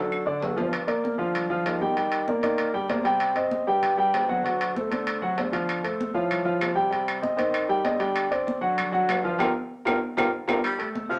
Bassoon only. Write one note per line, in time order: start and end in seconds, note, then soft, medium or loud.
0.00 0.39 D3 medium
0.42 0.88 G2 medium
1.19 1.63 D3 medium
1.65 2.38 D#3 loud
2.43 2.72 D#3 loud
2.74 2.89 D3 medium
2.89 3.62 C3 medium
3.67 4.10 G2 medium
4.14 4.86 D2 medium
4.91 5.20 D3 medium
5.23 5.37 C3 medium
5.38 5.83 D3 medium
6.15 6.58 A2 loud
6.61 7.33 C3 medium
7.38 7.82 D#3 medium
7.85 8.57 D3 medium
8.63 9.06 D3 medium
9.10 9.38 G2 medium
9.41 9.52 G2 medium
9.87 9.98 G2 medium
10.18 10.29 G2 medium
10.49 10.60 G2 loud
11.10 11.19 C3 loud